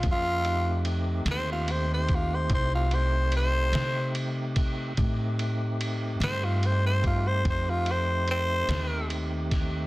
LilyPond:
<<
  \new Staff \with { instrumentName = "Tenor saxophone" } { \time 12/8 \key f \dorian \tempo 4. = 49 f'4 r8 c''16 f'16 c''16 c''16 f'16 c''16 c''16 f'16 c''8 c''4 r4 | r4. c''16 f'16 c''16 c''16 f'16 c''16 c''16 f'16 c''8 c''4 r4 | }
  \new Staff \with { instrumentName = "Tonewheel organ" } { \time 12/8 \key f \dorian <bes des' aes' e''>8 <a c' ees' g'>1~ <a c' ees' g'>4. | <a c' ees' g'>1. | }
  \new Staff \with { instrumentName = "Upright bass" } { \clef bass \time 12/8 \key f \dorian f,4. ees,4. c,4. c4. | a,4. g,4. f,4. ees,4. | }
  \new DrumStaff \with { instrumentName = "Drums" } \drummode { \time 12/8 <bd cymr>8 cymr8 cymr8 <cymr sn>8 cymr8 <bd cymr>8 <bd cymr>8 cymr8 cymr8 <cymr sn>8 cymr8 <bd cymr>8 | <bd cymr>8 cymr8 cymr8 <cymr sn>8 cymr8 <bd cymr>8 <bd cymr>8 cymr8 cymr8 <cymr sn>8 cymr8 <bd cymr sn>8 | }
>>